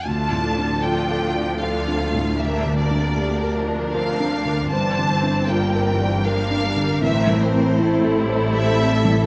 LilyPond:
<<
  \new Staff \with { instrumentName = "Violin section" } { \time 3/4 \key d \minor \tempo 4 = 78 a''4 g''4 f''4 | e''8 d''4 r8 f''4 | a''4 g''4 f''4 | e''8 c''4 r8 e''4 | }
  \new Staff \with { instrumentName = "Violin section" } { \time 3/4 \key d \minor << { a'2 a'4 | bes'2. | c''4 bes'4 bes'4~ | bes'4 a'2 | } \\ { d'4 f'4 f'4 | d'4 d'2 | c'2 bes4 | c'4 e'2 | } >> }
  \new Staff \with { instrumentName = "Felt piano" } { \time 3/4 \key d \minor \tuplet 3/2 { d,8 a,8 d'8 f'8 a'8 d''8 a'8 d'8 a,8 } | \tuplet 3/2 { d,8 d8 d'8 g'8 bes'8 d''8 bes'8 d'8 d8 } | \tuplet 3/2 { g,8 d8 d'8 f'8 bes'8 d''8 bes'8 d'8 d8 } | \tuplet 3/2 { a,8 e8 c'8 e'8 a'8 c''8 a'8 c'8 e8 } | }
  \new Staff \with { instrumentName = "Viola section" } { \time 3/4 \key d \minor << { f'4 d'4 d'8 a8 | bes2 c'8 d'8 | d'8 c'8 bes4 d'4 | c'4 c'4 c'8 e'8 | } \\ { a8 f2~ f8 | g4 g8 f4. | e4 d8 e8 f8 g8 | e4 a8 g4. | } >> }
  \new Staff \with { instrumentName = "Cello section" } { \clef bass \time 3/4 \key d \minor d,2.~ | d,2. | g,2. | a,2. | }
  \new Staff \with { instrumentName = "Double bass section" } { \clef bass \time 3/4 \key d \minor d,2.~ | d,2. | g,,2. | a,,2. | }
>>